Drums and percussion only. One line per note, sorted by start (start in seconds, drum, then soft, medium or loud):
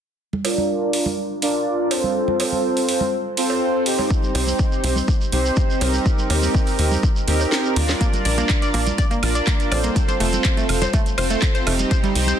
0.33 high conga medium
0.45 open hi-hat medium
0.45 cowbell medium
0.58 high conga medium
0.93 open hi-hat medium
1.06 high conga medium
1.42 open hi-hat medium
1.91 open hi-hat loud
1.91 cowbell medium
2.04 high conga medium
2.28 high conga medium
2.40 open hi-hat loud
2.40 cowbell medium
2.52 high conga medium
2.77 open hi-hat medium
2.89 open hi-hat loud
3.01 high conga medium
3.37 open hi-hat loud
3.50 cowbell medium
3.86 open hi-hat loud
3.99 cowbell medium
3.99 high conga medium
4.11 kick loud
4.11 shekere medium
4.23 high conga medium
4.23 shekere soft
4.35 open hi-hat loud
4.35 cowbell medium
4.47 high conga medium
4.47 shekere medium
4.59 kick loud
4.59 shekere medium
4.72 shekere soft
4.84 open hi-hat medium
4.96 high conga medium
4.96 shekere medium
5.08 kick loud
5.08 shekere medium
5.21 shekere soft
5.32 open hi-hat loud
5.45 shekere medium
5.56 kick loud
5.56 shekere medium
5.70 shekere soft
5.81 open hi-hat loud
5.81 cowbell medium
5.93 high conga medium
5.93 shekere medium
6.05 kick loud
6.05 shekere medium
6.18 high conga medium
6.18 shekere soft
6.30 open hi-hat loud
6.30 cowbell medium
6.42 high conga medium
6.42 shekere medium
6.55 kick loud
6.55 shekere medium
6.66 open hi-hat medium
6.66 shekere soft
6.79 open hi-hat loud
6.91 high conga medium
6.91 shekere medium
7.03 kick loud
7.03 shekere medium
7.16 shekere soft
7.28 open hi-hat loud
7.40 cowbell medium
7.40 shekere medium
7.52 snare loud
7.52 shekere medium
7.64 shekere soft
7.76 open hi-hat loud
7.89 snare medium
7.89 cowbell medium
7.89 high conga medium
7.89 shekere medium
8.01 kick loud
8.01 closed hi-hat medium
8.01 shekere medium
8.13 closed hi-hat soft
8.13 high conga medium
8.13 shekere soft
8.25 open hi-hat loud
8.38 closed hi-hat soft
8.38 high conga medium
8.38 shekere medium
8.49 kick loud
8.49 clap loud
8.49 closed hi-hat medium
8.49 shekere medium
8.62 closed hi-hat soft
8.62 shekere soft
8.74 open hi-hat loud
8.86 closed hi-hat soft
8.86 high conga medium
8.86 shekere medium
8.98 kick loud
8.98 closed hi-hat medium
8.98 shekere medium
9.11 closed hi-hat soft
9.11 shekere soft
9.23 open hi-hat loud
9.23 high woodblock medium
9.35 closed hi-hat soft
9.35 shekere medium
9.47 kick loud
9.47 clap loud
9.47 closed hi-hat medium
9.47 shekere medium
9.60 closed hi-hat soft
9.60 shekere soft
9.72 open hi-hat loud
9.72 cowbell medium
9.72 high woodblock medium
9.83 closed hi-hat soft
9.83 high conga medium
9.83 shekere medium
9.96 kick loud
9.96 closed hi-hat medium
9.96 shekere medium
10.08 closed hi-hat soft
10.08 high conga medium
10.08 shekere soft
10.20 open hi-hat loud
10.33 closed hi-hat soft
10.33 high conga medium
10.33 shekere medium
10.44 kick loud
10.44 clap loud
10.44 closed hi-hat medium
10.44 shekere medium
10.57 closed hi-hat soft
10.57 shekere soft
10.69 open hi-hat loud
10.69 high woodblock medium
10.82 closed hi-hat soft
10.82 cowbell medium
10.82 high conga medium
10.82 shekere medium
10.93 kick loud
10.93 closed hi-hat medium
10.93 shekere medium
11.06 closed hi-hat soft
11.06 shekere soft
11.18 open hi-hat loud
11.18 high woodblock medium
11.30 closed hi-hat soft
11.30 shekere medium
11.42 kick loud
11.42 clap loud
11.42 closed hi-hat medium
11.42 shekere medium
11.55 closed hi-hat soft
11.55 shekere soft
11.67 open hi-hat loud
11.67 high woodblock medium
11.79 closed hi-hat soft
11.79 high conga medium
11.79 shekere medium
11.91 kick loud
11.91 closed hi-hat medium
11.91 shekere medium
12.03 closed hi-hat soft
12.03 high conga medium
12.03 shekere soft
12.15 open hi-hat loud
12.27 closed hi-hat soft
12.27 high conga medium
12.27 shekere medium